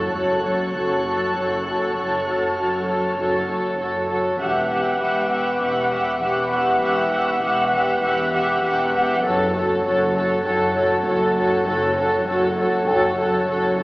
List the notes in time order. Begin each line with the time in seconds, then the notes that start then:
Already playing: F#1 F#4 A4 C#5 A5 C#6 F#6, sub drop
0.15 F#1 F#2 F#4 A4 C#5
0.45 F#3 F#4 A4 C#5
0.75 F#1 F#2 F#4 A4 C#5
1.05 F#3 F#4 A4 C#5
1.35 F#1 F#2 F#4 A4 C#5
1.66 F#2 F#4 A4 C#5
1.96 F#1 F#2 F#4 A4 C#5
2.27 F#2 F#4 A4 C#5
2.48 F6
2.57 F#1 F#2 F#4 A4 C#5
2.87 F#3 F#4 A4 C#5
3.18 F#1 F#2 F#4 A4 C#5
3.48 F#3 F#4 A4 C#5
3.79 F#1 F#2 F#4 A4 C#5
4.09 F#2 F#4 A4 C#5
4.38 E1 E2 G4 B4 E5 F#5 B5 D6
4.70 E2 G4 E5 F#5
5.00 E1 E2 G4 E5 F#5 C#6
5.30 E3 G4 E5 F#5
5.59 E1 E2 G4 E5 F#5
5.91 E3 G4 E5 F#5
6.21 E1 E2 G4 E5 F#5
6.50 E2 G4 E5 F#5
6.81 E1 E2 G4 E5 F#5
6.87 D#6
7.12 E2 G4 E5 F#5
7.42 E1 E2 G4 E5 F#5
7.72 E3 G4 E5 F#5
8.02 E1 E2 G4 E5 F#5
8.33 E3 G4 E5 F#5
8.63 E1 E2 G4 E5 F#5
8.94 E2 G4 E5 F#5
9.23 F#1 F#2 F#4 A4 C#5 F#5
9.54 F#2 F#4 A4 C#5
9.84 F#1 F#2 F#4 A4 C#5
10.13 F#3 F#4 A4 C#5
10.45 F#1 F#2 F#4 A4 C#5
10.75 F#3 F#4 A4 C#5
11.05 F#1 F#2 F#4 A4 C#5
11.36 F#2 F#4 A4 C#5
11.66 F#1 F#2 F#4 A4 C#5
11.96 F#2 F#4 A4 C#5
12.26 F#1 F#2 F#4 A4 C#5
12.57 F#3 F#4 A4 C#5
12.87 F#1 F#2 F#4 A4 C#5
13.18 F#3 F#4 A4 C#5
13.48 F#1 F#2 F#4 A4 C#5
13.78 F#2 F#4 A4 C#5